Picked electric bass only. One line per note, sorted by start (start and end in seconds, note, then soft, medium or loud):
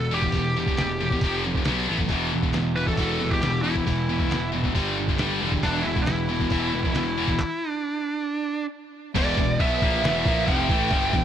0.00 0.30 E1 medium
0.34 0.74 E1 medium
0.79 1.19 E1 medium
1.22 1.62 F1 medium
1.68 1.87 B1 medium
1.90 2.09 A1 medium
2.10 2.30 E1 medium
2.33 2.53 E1 medium
2.55 2.95 E1 medium
2.99 3.19 E1 medium
3.23 3.42 E1 medium
3.45 3.84 E1 medium
3.87 4.27 E1 medium
4.32 4.71 E1 medium
4.76 5.15 G1 medium
5.20 5.39 G1 medium
5.43 5.62 E1 loud
5.64 5.83 E1 loud
5.86 6.06 E1 medium
6.08 6.48 E1 medium
6.52 6.71 E1 medium
6.74 6.94 E1 medium
6.96 7.36 E1 medium
9.16 9.36 E1 loud
9.38 9.58 E1 medium
9.60 9.80 B1 loud
9.82 10.02 A#1 loud
10.04 10.24 E1 loud
10.26 10.46 A#1 medium
10.48 10.68 F1 medium
10.70 10.90 A1 loud
10.92 11.12 G1 loud
11.14 11.24 E1 medium